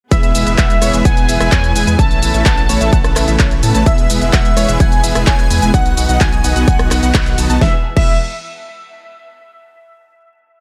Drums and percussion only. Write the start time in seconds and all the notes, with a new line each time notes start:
0.11 kick, closed hi-hat, shaker
0.23 closed hi-hat, shaker
0.35 open hi-hat, shaker
0.47 closed hi-hat, shaker
0.58 kick, clap, closed hi-hat, shaker
0.70 closed hi-hat, shaker
0.82 cross-stick, open hi-hat, shaker
0.94 closed hi-hat, shaker
1.05 kick, closed hi-hat, shaker
1.17 closed hi-hat, shaker
1.29 open hi-hat, shaker
1.40 cross-stick, closed hi-hat, shaker
1.52 kick, clap, closed hi-hat, shaker
1.64 closed hi-hat, shaker
1.76 open hi-hat, shaker
1.87 closed hi-hat, shaker
1.99 kick, closed hi-hat, shaker
2.11 closed hi-hat, shaker
2.23 open hi-hat, shaker
2.34 closed hi-hat, shaker
2.46 kick, clap, closed hi-hat, shaker
2.58 closed hi-hat, shaker
2.69 open hi-hat, shaker
2.81 closed hi-hat, shaker
2.93 kick, closed hi-hat, shaker
3.04 cross-stick, closed hi-hat, shaker
3.16 cross-stick, clap, open hi-hat, shaker
3.28 closed hi-hat, shaker
3.39 kick, clap, closed hi-hat, shaker
3.51 closed hi-hat, shaker
3.63 open hi-hat, shaker
3.75 closed hi-hat, shaker
3.86 kick, closed hi-hat, shaker
3.98 closed hi-hat, shaker
4.10 open hi-hat, shaker
4.22 closed hi-hat, shaker
4.33 kick, clap, closed hi-hat, shaker
4.45 closed hi-hat, shaker
4.57 cross-stick, open hi-hat, shaker
4.69 closed hi-hat, shaker
4.80 kick, closed hi-hat, shaker
4.92 closed hi-hat, shaker
5.04 open hi-hat, shaker
5.15 cross-stick, closed hi-hat, shaker
5.27 kick, clap, closed hi-hat, shaker
5.39 closed hi-hat, shaker
5.50 open hi-hat, shaker
5.62 closed hi-hat, shaker
5.74 kick, closed hi-hat, shaker
5.86 closed hi-hat, shaker
5.97 open hi-hat, shaker
6.09 closed hi-hat, shaker
6.21 kick, clap, closed hi-hat, shaker
6.33 closed hi-hat, shaker
6.44 open hi-hat, shaker
6.56 closed hi-hat, shaker
6.68 kick, closed hi-hat, shaker
6.79 cross-stick, closed hi-hat, shaker
6.91 cross-stick, clap, open hi-hat, shaker
7.03 closed hi-hat, shaker
7.14 kick, clap, closed hi-hat, shaker
7.26 closed hi-hat, shaker
7.38 open hi-hat, shaker
7.50 closed hi-hat, shaker
7.61 kick, snare
7.97 kick, crash